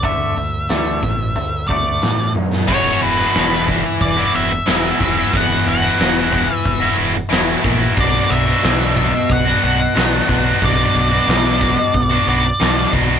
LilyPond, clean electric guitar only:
\new Staff \with { instrumentName = "Clean electric guitar" } { \time 4/4 \key b \minor \tempo 4 = 91 <d a d'>8 <d a>8 <d a d'>8 <d a>8 <d a>8 <d a d'>8 <d a>8 <d a>8 | r1 | r1 | r1 |
r1 | }